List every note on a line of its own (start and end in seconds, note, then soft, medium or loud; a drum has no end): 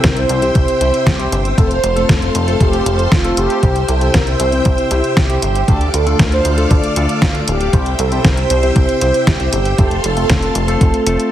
0.00 0.25 C2 medium
0.00 0.39 C3 medium
0.00 0.39 C4 medium
0.00 0.39 E4 medium
0.00 0.39 G4 medium
0.00 0.39 C5 medium
0.00 5.64 C5 medium
0.00 1.56 E5 medium
0.00 1.56 G5 medium
0.00 1.56 E6 medium
0.00 kick loud
0.00 snare loud
0.00 closed hi-hat medium
0.04 0.17 A#4 medium
0.17 0.54 C5 loud
0.17 closed hi-hat soft
0.29 0.51 C2 loud
0.29 closed hi-hat medium
0.42 0.78 C3 medium
0.42 0.78 C4 medium
0.42 0.78 E4 medium
0.42 0.78 G4 medium
0.42 0.78 C5 medium
0.42 closed hi-hat soft
0.55 0.66 C2 loud
0.55 1.08 C5 loud
0.55 kick loud
0.55 closed hi-hat medium
0.68 closed hi-hat soft
0.81 0.91 C2 medium
0.81 1.16 C3 medium
0.81 1.16 C4 medium
0.81 1.16 E4 medium
0.81 1.16 G4 medium
0.81 1.16 C5 loud
0.81 closed hi-hat medium
0.94 closed hi-hat soft
1.06 1.27 C2 medium
1.06 1.42 G4 medium
1.06 kick loud
1.06 snare loud
1.06 closed hi-hat medium
1.19 1.34 C3 medium
1.19 1.34 C4 medium
1.19 1.34 E4 medium
1.19 1.34 G4 medium
1.19 1.35 C5 medium
1.19 closed hi-hat soft
1.32 1.53 G1 loud
1.32 closed hi-hat medium
1.45 closed hi-hat soft
1.58 1.79 F1 medium
1.58 1.73 A3 medium
1.58 1.73 C4 medium
1.58 1.73 F4 medium
1.58 1.73 A4 medium
1.58 3.61 A4 medium
1.58 1.70 A4 loud
1.58 3.61 F5 medium
1.58 3.61 C6 medium
1.58 kick loud
1.58 closed hi-hat medium
1.71 2.10 C5 loud
1.71 closed hi-hat soft
1.84 2.05 F1 loud
1.84 closed hi-hat medium
1.96 2.44 A3 medium
1.96 2.44 C4 medium
1.96 2.44 F4 medium
1.96 2.44 A4 medium
1.96 closed hi-hat soft
2.09 2.30 F1 medium
2.09 2.21 A4 medium
2.09 kick loud
2.09 snare loud
2.09 closed hi-hat medium
2.22 closed hi-hat soft
2.35 2.56 F1 loud
2.35 2.61 A4 medium
2.35 closed hi-hat medium
2.47 2.83 A3 medium
2.47 2.83 C4 medium
2.47 2.83 F4 medium
2.47 2.83 A4 medium
2.47 closed hi-hat soft
2.60 2.81 F1 medium
2.60 3.13 G4 loud
2.60 kick loud
2.60 closed hi-hat medium
2.73 closed hi-hat soft
2.86 3.07 F1 loud
2.86 closed hi-hat medium
2.99 closed hi-hat soft
3.12 3.33 F1 medium
3.12 3.38 F4 loud
3.12 kick loud
3.12 snare loud
3.12 closed hi-hat medium
3.24 3.34 A3 medium
3.24 3.34 C4 medium
3.24 3.34 F4 medium
3.24 3.34 A4 loud
3.24 closed hi-hat soft
3.37 3.48 F1 medium
3.37 3.60 A3 medium
3.37 3.60 C4 medium
3.37 3.60 F4 medium
3.37 3.90 G4 loud
3.37 3.60 A4 medium
3.37 closed hi-hat medium
3.50 closed hi-hat soft
3.63 3.84 C2 loud
3.63 3.78 C3 medium
3.63 3.78 C4 medium
3.63 3.78 E4 medium
3.63 3.78 G4 medium
3.63 3.78 C5 medium
3.63 5.66 E5 medium
3.63 5.66 G5 medium
3.63 5.66 E6 medium
3.63 kick loud
3.63 closed hi-hat medium
3.76 closed hi-hat soft
3.89 4.10 C2 loud
3.89 4.12 A4 medium
3.89 closed hi-hat medium
4.01 4.50 C3 medium
4.01 4.50 C4 medium
4.01 4.50 E4 medium
4.01 4.50 G4 medium
4.01 4.50 C5 medium
4.01 closed hi-hat soft
4.14 4.35 C2 medium
4.14 4.28 A#4 loud
4.14 kick loud
4.14 snare loud
4.14 closed hi-hat medium
4.27 4.65 C5 loud
4.27 closed hi-hat soft
4.40 4.61 C2 loud
4.40 closed hi-hat medium
4.52 4.88 C3 medium
4.52 4.88 C4 medium
4.52 4.88 E4 medium
4.52 4.88 G4 medium
4.52 4.88 C5 medium
4.52 closed hi-hat soft
4.65 4.76 C2 medium
4.65 5.18 C5 loud
4.65 kick loud
4.65 closed hi-hat medium
4.78 closed hi-hat soft
4.91 5.02 C2 medium
4.91 5.26 C3 medium
4.91 5.26 C4 medium
4.91 5.26 E4 medium
4.91 5.27 G4 medium
4.91 5.27 C5 medium
4.91 closed hi-hat medium
5.04 closed hi-hat soft
5.17 5.38 C2 medium
5.17 5.42 G4 loud
5.17 kick loud
5.17 snare loud
5.17 closed hi-hat medium
5.29 5.45 C3 medium
5.29 5.45 C4 medium
5.29 5.45 E4 medium
5.29 5.45 G4 medium
5.29 5.45 C5 medium
5.29 closed hi-hat soft
5.42 5.64 G1 medium
5.42 5.95 G4 loud
5.42 closed hi-hat medium
5.55 closed hi-hat soft
5.68 5.89 D2 loud
5.68 5.83 D3 medium
5.68 5.83 A3 medium
5.68 5.83 D4 medium
5.68 5.83 F4 medium
5.68 5.83 A4 medium
5.68 7.71 A4 medium
5.68 7.71 D5 medium
5.68 7.71 F5 medium
5.68 7.71 D6 medium
5.68 kick loud
5.68 closed hi-hat medium
5.81 closed hi-hat soft
5.94 6.15 D2 loud
5.94 6.18 A4 medium
5.94 closed hi-hat medium
6.07 6.55 D3 medium
6.07 6.55 A3 medium
6.07 6.55 D4 medium
6.07 6.55 F4 medium
6.07 6.55 A4 medium
6.07 closed hi-hat soft
6.19 6.40 D2 loud
6.19 6.25 A#4 loud
6.19 kick loud
6.19 snare loud
6.19 closed hi-hat medium
6.32 6.72 C5 loud
6.32 closed hi-hat soft
6.45 6.66 D2 loud
6.45 closed hi-hat medium
6.58 6.93 D3 medium
6.58 6.93 A3 medium
6.58 6.93 D4 medium
6.58 6.93 F4 medium
6.58 6.93 A4 medium
6.58 closed hi-hat soft
6.71 6.81 D2 loud
6.71 7.24 D5 loud
6.71 kick loud
6.71 closed hi-hat medium
6.84 closed hi-hat soft
6.96 7.07 D2 medium
6.96 7.32 D3 medium
6.96 7.32 A3 medium
6.96 7.32 D4 medium
6.96 7.32 F4 medium
6.96 7.32 A4 medium
6.96 closed hi-hat medium
7.09 closed hi-hat soft
7.22 7.43 D2 medium
7.22 7.34 F5 loud
7.22 kick loud
7.22 snare loud
7.22 closed hi-hat medium
7.35 7.50 D3 medium
7.35 7.50 A3 medium
7.35 7.50 D4 medium
7.35 7.50 F4 medium
7.35 7.50 A4 medium
7.35 closed hi-hat soft
7.48 7.69 D1 loud
7.48 8.01 G4 loud
7.48 closed hi-hat medium
7.61 closed hi-hat soft
7.73 7.94 C2 loud
7.73 7.88 C3 medium
7.73 7.88 C4 medium
7.73 7.88 E4 medium
7.73 7.88 G4 medium
7.73 11.28 C5 medium
7.73 7.88 C5 medium
7.73 9.76 E5 medium
7.73 9.76 G5 medium
7.73 9.76 E6 medium
7.73 kick loud
7.73 closed hi-hat medium
7.86 closed hi-hat soft
7.99 8.20 C2 loud
7.99 8.25 A4 loud
7.99 closed hi-hat medium
8.12 8.60 C3 medium
8.12 8.60 C4 medium
8.12 8.60 E4 medium
8.12 8.60 G4 medium
8.12 8.60 C5 loud
8.12 closed hi-hat soft
8.24 8.46 C2 medium
8.24 8.38 A#4 loud
8.24 kick loud
8.24 snare loud
8.24 closed hi-hat medium
8.37 8.75 C5 loud
8.37 closed hi-hat soft
8.50 8.71 C2 loud
8.50 closed hi-hat medium
8.63 8.98 C3 medium
8.63 8.98 C4 medium
8.63 8.98 E4 medium
8.63 8.98 G4 medium
8.63 8.98 C5 medium
8.63 closed hi-hat soft
8.76 8.86 C2 loud
8.76 9.29 C5 loud
8.76 kick loud
8.76 closed hi-hat medium
8.89 closed hi-hat soft
9.01 9.12 C2 medium
9.01 9.37 C3 medium
9.01 9.37 C4 medium
9.01 9.37 E4 medium
9.01 9.37 G4 medium
9.01 9.37 C5 medium
9.01 closed hi-hat medium
9.14 closed hi-hat soft
9.27 9.48 C2 medium
9.27 9.52 G4 loud
9.27 kick loud
9.27 snare loud
9.27 closed hi-hat medium
9.40 9.55 C3 medium
9.40 9.55 C4 medium
9.40 9.55 E4 medium
9.40 9.55 G4 medium
9.40 9.55 C5 medium
9.40 closed hi-hat soft
9.53 9.74 G1 medium
9.53 10.06 G4 loud
9.53 closed hi-hat loud
9.65 closed hi-hat soft
9.78 9.99 F1 loud
9.78 9.94 A3 medium
9.78 9.94 C4 medium
9.78 9.94 F4 medium
9.78 11.30 A4 medium
9.78 9.94 A4 medium
9.78 11.30 F5 medium
9.78 11.30 C6 medium
9.78 kick loud
9.78 closed hi-hat medium
9.91 closed hi-hat soft
10.04 10.25 F1 loud
10.04 10.80 A4 loud
10.04 closed hi-hat medium
10.17 10.65 A3 medium
10.17 10.65 C4 medium
10.17 10.65 F4 medium
10.17 10.65 A4 medium
10.17 closed hi-hat soft
10.30 10.51 F1 loud
10.30 kick loud
10.30 snare loud
10.30 closed hi-hat medium
10.42 closed hi-hat soft
10.55 10.76 F1 loud
10.55 closed hi-hat medium
10.68 11.03 A3 medium
10.68 11.03 C4 medium
10.68 11.03 F4 medium
10.68 11.03 A4 medium
10.68 closed hi-hat soft
10.81 10.91 F1 loud
10.81 11.29 A4 medium
10.81 kick loud
10.81 closed hi-hat medium
10.94 closed hi-hat soft
11.06 11.17 F1 medium
11.06 11.32 A3 medium
11.06 11.32 C4 medium
11.06 11.32 F4 medium
11.06 11.32 A4 loud
11.06 closed hi-hat loud
11.20 closed hi-hat soft